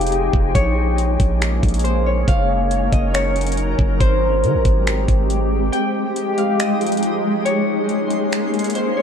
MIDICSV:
0, 0, Header, 1, 6, 480
1, 0, Start_track
1, 0, Tempo, 431655
1, 614, Time_signature, 4, 2, 24, 8
1, 10030, End_track
2, 0, Start_track
2, 0, Title_t, "Harp"
2, 0, Program_c, 0, 46
2, 0, Note_on_c, 0, 75, 83
2, 0, Note_on_c, 0, 77, 83
2, 0, Note_on_c, 0, 79, 103
2, 412, Note_off_c, 0, 79, 0
2, 608, Note_on_c, 0, 73, 105
2, 1268, Note_off_c, 0, 77, 0
2, 1638, Note_off_c, 0, 75, 0
2, 2048, Note_on_c, 0, 72, 78
2, 2115, Note_off_c, 0, 73, 0
2, 2295, Note_on_c, 0, 73, 78
2, 2361, Note_off_c, 0, 72, 0
2, 2538, Note_on_c, 0, 77, 100
2, 3251, Note_on_c, 0, 75, 87
2, 3486, Note_off_c, 0, 73, 0
2, 3491, Note_on_c, 0, 73, 92
2, 4389, Note_off_c, 0, 77, 0
2, 4452, Note_on_c, 0, 72, 113
2, 4519, Note_off_c, 0, 73, 0
2, 5235, Note_off_c, 0, 75, 0
2, 6365, Note_on_c, 0, 79, 105
2, 6653, Note_off_c, 0, 72, 0
2, 7094, Note_on_c, 0, 77, 78
2, 7334, Note_on_c, 0, 75, 86
2, 8092, Note_off_c, 0, 79, 0
2, 8287, Note_on_c, 0, 73, 108
2, 8944, Note_off_c, 0, 77, 0
2, 9317, Note_off_c, 0, 75, 0
2, 9730, Note_on_c, 0, 72, 74
2, 9797, Note_off_c, 0, 73, 0
2, 9973, Note_on_c, 0, 73, 80
2, 10030, Note_off_c, 0, 72, 0
2, 10030, Note_off_c, 0, 73, 0
2, 10030, End_track
3, 0, Start_track
3, 0, Title_t, "Synth texture"
3, 0, Program_c, 1, 99
3, 6371, Note_on_c, 1, 56, 85
3, 6371, Note_on_c, 1, 75, 94
3, 6372, Note_on_c, 1, 67, 78
3, 8273, Note_off_c, 1, 67, 0
3, 8273, Note_off_c, 1, 75, 0
3, 8292, Note_on_c, 1, 61, 75
3, 8294, Note_on_c, 1, 84, 93
3, 10030, Note_off_c, 1, 56, 0
3, 10030, Note_off_c, 1, 61, 0
3, 10030, Note_off_c, 1, 84, 0
3, 10030, End_track
4, 0, Start_track
4, 0, Title_t, "Ambient pad"
4, 0, Program_c, 2, 92
4, 0, Note_on_c, 2, 53, 77
4, 0, Note_on_c, 2, 63, 71
4, 0, Note_on_c, 2, 67, 86
4, 0, Note_on_c, 2, 68, 86
4, 575, Note_off_c, 2, 67, 0
4, 593, Note_off_c, 2, 53, 0
4, 593, Note_off_c, 2, 63, 0
4, 593, Note_off_c, 2, 68, 0
4, 613, Note_on_c, 2, 56, 78
4, 613, Note_on_c, 2, 58, 73
4, 613, Note_on_c, 2, 61, 87
4, 2514, Note_off_c, 2, 56, 0
4, 2514, Note_off_c, 2, 58, 0
4, 2532, Note_on_c, 2, 63, 74
4, 2532, Note_on_c, 2, 70, 88
4, 2533, Note_on_c, 2, 54, 80
4, 4415, Note_off_c, 2, 61, 0
4, 4434, Note_off_c, 2, 54, 0
4, 4434, Note_off_c, 2, 63, 0
4, 4434, Note_off_c, 2, 70, 0
4, 4453, Note_on_c, 2, 67, 88
4, 4454, Note_on_c, 2, 60, 72
4, 4455, Note_on_c, 2, 56, 80
4, 6354, Note_off_c, 2, 60, 0
4, 6355, Note_off_c, 2, 56, 0
4, 6369, Note_on_c, 2, 63, 71
4, 6371, Note_on_c, 2, 53, 75
4, 6371, Note_on_c, 2, 56, 89
4, 8255, Note_off_c, 2, 67, 0
4, 8272, Note_off_c, 2, 63, 0
4, 8273, Note_off_c, 2, 53, 0
4, 8273, Note_off_c, 2, 56, 0
4, 8291, Note_on_c, 2, 58, 75
4, 8291, Note_on_c, 2, 61, 87
4, 8292, Note_on_c, 2, 56, 78
4, 10030, Note_off_c, 2, 56, 0
4, 10030, Note_off_c, 2, 58, 0
4, 10030, Note_off_c, 2, 61, 0
4, 10030, End_track
5, 0, Start_track
5, 0, Title_t, "808-style bass"
5, 0, Program_c, 3, 38
5, 0, Note_on_c, 3, 29, 102
5, 334, Note_off_c, 3, 29, 0
5, 372, Note_on_c, 3, 29, 103
5, 603, Note_off_c, 3, 29, 0
5, 613, Note_on_c, 3, 34, 107
5, 1304, Note_off_c, 3, 34, 0
5, 1332, Note_on_c, 3, 34, 108
5, 1793, Note_off_c, 3, 34, 0
5, 1814, Note_on_c, 3, 34, 106
5, 2505, Note_off_c, 3, 34, 0
5, 2533, Note_on_c, 3, 30, 111
5, 3224, Note_off_c, 3, 30, 0
5, 3252, Note_on_c, 3, 30, 101
5, 4174, Note_off_c, 3, 30, 0
5, 4212, Note_on_c, 3, 30, 104
5, 4443, Note_off_c, 3, 30, 0
5, 4453, Note_on_c, 3, 32, 102
5, 4933, Note_on_c, 3, 51, 101
5, 4950, Note_off_c, 3, 32, 0
5, 5053, Note_on_c, 3, 32, 95
5, 5070, Note_off_c, 3, 51, 0
5, 5167, Note_off_c, 3, 32, 0
5, 5172, Note_on_c, 3, 32, 102
5, 5633, Note_off_c, 3, 32, 0
5, 5654, Note_on_c, 3, 32, 101
5, 6345, Note_off_c, 3, 32, 0
5, 10030, End_track
6, 0, Start_track
6, 0, Title_t, "Drums"
6, 13, Note_on_c, 9, 42, 62
6, 73, Note_off_c, 9, 42, 0
6, 73, Note_on_c, 9, 42, 76
6, 135, Note_off_c, 9, 42, 0
6, 135, Note_on_c, 9, 42, 73
6, 246, Note_off_c, 9, 42, 0
6, 372, Note_on_c, 9, 36, 101
6, 483, Note_off_c, 9, 36, 0
6, 613, Note_on_c, 9, 36, 111
6, 613, Note_on_c, 9, 42, 71
6, 724, Note_off_c, 9, 36, 0
6, 724, Note_off_c, 9, 42, 0
6, 1093, Note_on_c, 9, 42, 64
6, 1204, Note_off_c, 9, 42, 0
6, 1332, Note_on_c, 9, 36, 100
6, 1332, Note_on_c, 9, 42, 62
6, 1443, Note_off_c, 9, 36, 0
6, 1443, Note_off_c, 9, 42, 0
6, 1575, Note_on_c, 9, 42, 83
6, 1579, Note_on_c, 9, 26, 115
6, 1686, Note_off_c, 9, 42, 0
6, 1691, Note_off_c, 9, 26, 0
6, 1813, Note_on_c, 9, 42, 47
6, 1814, Note_on_c, 9, 36, 95
6, 1874, Note_off_c, 9, 42, 0
6, 1874, Note_on_c, 9, 42, 56
6, 1925, Note_off_c, 9, 36, 0
6, 1935, Note_off_c, 9, 42, 0
6, 1935, Note_on_c, 9, 42, 63
6, 1995, Note_off_c, 9, 42, 0
6, 1995, Note_on_c, 9, 42, 71
6, 2056, Note_off_c, 9, 42, 0
6, 2056, Note_on_c, 9, 42, 76
6, 2167, Note_off_c, 9, 42, 0
6, 2533, Note_on_c, 9, 36, 115
6, 2534, Note_on_c, 9, 42, 77
6, 2645, Note_off_c, 9, 36, 0
6, 2646, Note_off_c, 9, 42, 0
6, 3013, Note_on_c, 9, 42, 62
6, 3124, Note_off_c, 9, 42, 0
6, 3252, Note_on_c, 9, 42, 65
6, 3253, Note_on_c, 9, 36, 98
6, 3363, Note_off_c, 9, 42, 0
6, 3364, Note_off_c, 9, 36, 0
6, 3497, Note_on_c, 9, 42, 84
6, 3501, Note_on_c, 9, 26, 118
6, 3608, Note_off_c, 9, 42, 0
6, 3612, Note_off_c, 9, 26, 0
6, 3734, Note_on_c, 9, 42, 46
6, 3794, Note_off_c, 9, 42, 0
6, 3794, Note_on_c, 9, 42, 56
6, 3854, Note_off_c, 9, 42, 0
6, 3854, Note_on_c, 9, 42, 62
6, 3913, Note_off_c, 9, 42, 0
6, 3913, Note_on_c, 9, 42, 75
6, 3974, Note_off_c, 9, 42, 0
6, 3974, Note_on_c, 9, 42, 73
6, 4085, Note_off_c, 9, 42, 0
6, 4212, Note_on_c, 9, 36, 99
6, 4324, Note_off_c, 9, 36, 0
6, 4453, Note_on_c, 9, 36, 109
6, 4454, Note_on_c, 9, 42, 74
6, 4564, Note_off_c, 9, 36, 0
6, 4566, Note_off_c, 9, 42, 0
6, 4934, Note_on_c, 9, 42, 63
6, 5045, Note_off_c, 9, 42, 0
6, 5171, Note_on_c, 9, 42, 67
6, 5172, Note_on_c, 9, 36, 94
6, 5282, Note_off_c, 9, 42, 0
6, 5284, Note_off_c, 9, 36, 0
6, 5416, Note_on_c, 9, 42, 82
6, 5420, Note_on_c, 9, 26, 113
6, 5527, Note_off_c, 9, 42, 0
6, 5531, Note_off_c, 9, 26, 0
6, 5654, Note_on_c, 9, 36, 93
6, 5654, Note_on_c, 9, 42, 71
6, 5765, Note_off_c, 9, 36, 0
6, 5765, Note_off_c, 9, 42, 0
6, 5893, Note_on_c, 9, 42, 72
6, 6004, Note_off_c, 9, 42, 0
6, 6373, Note_on_c, 9, 42, 74
6, 6484, Note_off_c, 9, 42, 0
6, 6852, Note_on_c, 9, 42, 62
6, 6963, Note_off_c, 9, 42, 0
6, 7092, Note_on_c, 9, 42, 66
6, 7203, Note_off_c, 9, 42, 0
6, 7335, Note_on_c, 9, 42, 85
6, 7340, Note_on_c, 9, 26, 118
6, 7447, Note_off_c, 9, 42, 0
6, 7451, Note_off_c, 9, 26, 0
6, 7574, Note_on_c, 9, 42, 46
6, 7634, Note_off_c, 9, 42, 0
6, 7634, Note_on_c, 9, 42, 55
6, 7695, Note_off_c, 9, 42, 0
6, 7695, Note_on_c, 9, 42, 64
6, 7754, Note_off_c, 9, 42, 0
6, 7754, Note_on_c, 9, 42, 76
6, 7813, Note_off_c, 9, 42, 0
6, 7813, Note_on_c, 9, 42, 74
6, 7924, Note_off_c, 9, 42, 0
6, 8294, Note_on_c, 9, 42, 75
6, 8405, Note_off_c, 9, 42, 0
6, 8773, Note_on_c, 9, 42, 60
6, 8885, Note_off_c, 9, 42, 0
6, 9012, Note_on_c, 9, 42, 65
6, 9124, Note_off_c, 9, 42, 0
6, 9257, Note_on_c, 9, 42, 82
6, 9261, Note_on_c, 9, 26, 110
6, 9368, Note_off_c, 9, 42, 0
6, 9372, Note_off_c, 9, 26, 0
6, 9494, Note_on_c, 9, 42, 46
6, 9553, Note_off_c, 9, 42, 0
6, 9553, Note_on_c, 9, 42, 57
6, 9612, Note_off_c, 9, 42, 0
6, 9612, Note_on_c, 9, 42, 61
6, 9672, Note_off_c, 9, 42, 0
6, 9672, Note_on_c, 9, 42, 71
6, 9732, Note_off_c, 9, 42, 0
6, 9732, Note_on_c, 9, 42, 76
6, 9843, Note_off_c, 9, 42, 0
6, 10030, End_track
0, 0, End_of_file